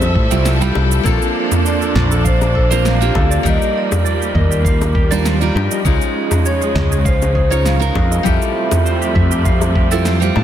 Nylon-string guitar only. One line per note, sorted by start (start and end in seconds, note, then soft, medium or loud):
0.00 0.11 G3 loud
0.00 0.11 C4 medium
0.00 0.12 E4 medium
0.00 0.13 F4 medium
0.00 0.13 A4 loud
0.30 0.57 G3 medium
0.30 0.57 C4 medium
0.30 0.57 E4 medium
0.30 0.58 F4 medium
0.30 0.58 C5 medium
0.61 1.02 G3 medium
0.61 1.02 C4 medium
0.61 1.02 E4 medium
0.61 1.03 F4 medium
0.61 1.03 G4 medium
1.03 2.51 A#3 loud
1.03 2.52 C4 medium
1.03 2.52 D4 medium
1.03 2.52 F4 medium
1.03 2.53 A4 loud
2.71 2.97 A#3 medium
2.71 2.98 C4 medium
2.71 2.98 D4 medium
2.71 2.98 F4 medium
2.71 2.98 A#4 medium
3.00 3.42 A#3 medium
3.00 3.42 C4 medium
3.00 3.42 D4 medium
3.00 3.42 F4 medium
3.00 3.43 G4 medium
3.43 4.91 G3 loud
3.43 4.92 D#4 medium
3.43 4.92 F4 medium
3.43 4.93 A#4 loud
5.11 5.37 G3 medium
5.11 5.37 D4 medium
5.11 5.38 D#4 medium
5.11 5.38 F4 medium
5.11 5.38 C5 loud
5.41 5.82 G3 medium
5.41 5.82 D4 medium
5.41 5.82 D#4 medium
5.41 5.82 F4 medium
5.41 5.83 G4 medium
5.85 7.32 G#3 loud
5.85 7.32 C#4 medium
5.85 7.32 D#4 medium
5.85 7.33 F4 medium
7.50 7.77 G#3 medium
7.50 7.77 C#4 medium
7.50 7.78 D#4 medium
7.50 7.78 F4 medium
7.50 7.78 C#5 medium
7.79 8.21 G#3 medium
7.79 8.21 C#4 medium
7.79 8.21 D#4 medium
7.79 8.22 F4 medium
7.79 8.22 A#4 medium
8.23 9.71 G3 loud
8.23 9.72 C4 medium
8.23 9.72 E4 medium
8.23 9.72 F4 medium
8.23 9.73 A4 loud
9.91 10.17 G3 medium
9.91 10.18 C4 medium
9.91 10.18 E4 medium
9.91 10.18 F4 medium
9.91 10.18 C5 loud
10.20 10.44 G3 medium
10.20 10.44 C4 medium
10.20 10.44 F4 medium
10.20 10.44 G4 loud